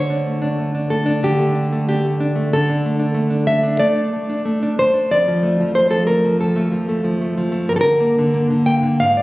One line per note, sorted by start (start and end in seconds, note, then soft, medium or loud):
0.00 1.20 D3 medium
0.00 0.87 C#5 loud
0.10 0.41 D4 medium
0.27 0.57 A3 medium
0.42 0.73 D4 medium
0.59 0.89 A3 medium
0.75 1.05 D4 medium
0.90 1.38 A3 medium
0.90 1.22 A4 medium
1.06 1.54 D4 medium
1.23 2.51 D3 medium
1.23 1.87 G4 medium
1.39 1.71 A3 medium
1.55 1.87 D4 medium
1.73 2.04 A3 medium
1.89 2.19 D4 medium
1.89 2.52 G4 medium
2.05 2.34 A3 medium
2.20 2.54 D4 medium
2.36 2.53 A3 medium
2.53 3.77 D3 medium
2.53 3.45 A4 medium
2.70 2.98 D4 medium
2.86 3.13 A3 medium
2.99 3.29 D4 medium
3.14 3.46 A3 medium
3.30 3.62 D4 medium
3.47 3.79 A3 medium
3.47 3.79 E5 loud
3.63 3.94 D4 medium
3.79 4.12 A3 medium
3.79 4.75 D5 medium
3.96 4.28 D4 medium
4.13 4.44 A3 medium
4.29 4.61 D4 medium
4.45 4.78 A3 medium
4.63 4.93 D4 medium
4.79 5.11 A3 medium
4.79 5.10 C5 loud
4.94 5.11 D4 medium
5.11 6.37 F2 medium
5.11 5.73 D5 loud
5.28 5.59 F3 medium
5.43 5.74 A3 medium
5.60 5.75 F3 medium
5.75 6.05 A3 medium
5.75 5.90 C5 loud
5.90 6.23 F3 medium
5.90 6.06 A4 medium
6.06 6.55 A3 medium
6.06 6.39 A#4 loud
6.24 6.70 F3 medium
6.40 7.64 F2 medium
6.40 7.02 A4 medium
6.56 6.88 A3 medium
6.72 7.03 F3 medium
6.89 7.20 A3 medium
7.04 7.36 F3 medium
7.21 7.51 A3 medium
7.38 7.69 F3 medium
7.52 7.68 A3 medium
7.69 8.95 G2 medium
7.69 7.76 A#4 loud
7.76 7.80 A4 medium
7.81 8.17 D3 medium
7.81 8.62 A#4 loud
8.00 8.33 A#3 medium
8.19 8.49 D3 medium
8.34 8.66 A#3 medium
8.50 8.82 D3 medium
8.66 8.99 A#3 medium
8.66 8.98 G5 loud
8.83 8.99 D3 medium
9.00 9.22 G#2 medium
9.00 9.22 F5 loud
9.17 9.22 D5 medium